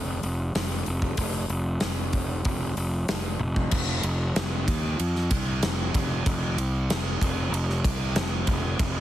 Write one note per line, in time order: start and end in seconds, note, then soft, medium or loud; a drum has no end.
0.00 0.20 F1 medium
0.23 0.52 F1 medium
0.23 open hi-hat medium
0.55 0.83 F1 medium
0.55 snare loud
0.55 open hi-hat medium
0.86 1.16 F1 medium
0.86 open hi-hat medium
1.02 kick medium
1.17 1.47 F1 medium
1.17 kick loud
1.17 open hi-hat medium
1.49 1.79 F1 medium
1.49 open hi-hat medium
1.80 2.42 F1 medium
1.80 snare loud
1.80 open hi-hat medium
2.13 kick medium
2.13 open hi-hat medium
2.45 2.74 F1 medium
2.45 kick loud
2.45 open hi-hat medium
2.77 3.06 F1 medium
2.77 open hi-hat medium
3.08 3.38 F1 medium
3.08 snare loud
3.08 open hi-hat medium
3.40 3.69 F1 medium
3.40 high tom medium
3.56 kick medium
3.71 4.02 F1 medium
3.71 kick loud
3.71 crash loud
4.03 4.33 F1 loud
4.03 ride medium
4.36 4.65 F1 medium
4.36 snare loud
4.36 ride loud
4.68 4.97 D#2 medium
4.68 kick medium
4.68 ride medium
4.99 5.29 F2 loud
4.99 ride loud
5.15 snare soft
5.31 5.60 C2 medium
5.31 kick medium
5.31 ride medium
5.62 5.92 F1 medium
5.62 snare loud
5.62 ride loud
5.94 6.24 F1 medium
5.94 kick medium
5.94 ride medium
6.26 6.55 F1 medium
6.26 kick loud
6.26 ride loud
6.57 6.87 C2 loud
6.57 ride medium
6.89 7.19 F1 medium
6.89 snare loud
6.89 ride loud
7.21 7.50 F1 loud
7.21 kick medium
7.21 ride medium
7.52 7.81 F1 loud
7.52 ride loud
7.70 snare soft
7.84 8.14 C2 medium
7.84 kick loud
7.84 ride medium
8.16 8.45 F1 loud
8.16 snare loud
8.16 ride loud
8.47 8.77 F1 loud
8.47 kick medium
8.47 ride medium
8.79 9.00 F1 loud
8.79 kick loud
8.79 ride loud